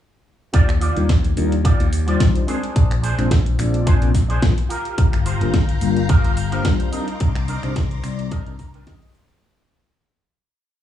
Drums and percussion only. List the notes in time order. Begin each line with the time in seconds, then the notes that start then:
0.54 kick, closed hi-hat
0.69 finger snap, closed hi-hat
0.81 open hi-hat
0.97 closed hi-hat
1.09 kick, snare, closed hi-hat
1.25 closed hi-hat
1.37 open hi-hat
1.52 closed hi-hat
1.65 kick, closed hi-hat
1.80 closed hi-hat
1.93 open hi-hat
2.08 closed hi-hat
2.20 kick, snare, closed hi-hat
2.36 closed hi-hat
2.48 open hi-hat
2.63 closed hi-hat
2.76 kick, closed hi-hat
2.91 finger snap, closed hi-hat
3.04 open hi-hat
3.19 finger snap, closed hi-hat
3.31 kick, snare, closed hi-hat
3.46 closed hi-hat
3.59 finger snap, open hi-hat
3.74 closed hi-hat
3.87 kick, closed hi-hat
4.02 closed hi-hat
4.15 kick, snare, open hi-hat
4.30 closed hi-hat
4.42 kick, snare, closed hi-hat
4.58 closed hi-hat
4.70 open hi-hat
4.85 closed hi-hat
4.98 kick, closed hi-hat
5.13 finger snap, closed hi-hat
5.26 open hi-hat
5.41 closed hi-hat
5.54 kick, snare, closed hi-hat
5.69 closed hi-hat
5.81 open hi-hat
5.96 closed hi-hat
6.09 kick, closed hi-hat
6.24 closed hi-hat
6.37 open hi-hat
6.52 closed hi-hat
6.65 kick, snare, closed hi-hat
6.80 closed hi-hat
6.93 open hi-hat
7.08 closed hi-hat
7.20 kick, closed hi-hat
7.35 finger snap, closed hi-hat
7.48 open hi-hat
7.63 finger snap, closed hi-hat
7.76 kick, snare, closed hi-hat
7.91 closed hi-hat
8.04 finger snap, open hi-hat
8.19 closed hi-hat
8.31 kick, closed hi-hat
8.46 closed hi-hat
8.59 kick, snare, open hi-hat
8.74 closed hi-hat
8.87 kick, snare, closed hi-hat
9.02 closed hi-hat
9.15 open hi-hat
9.30 closed hi-hat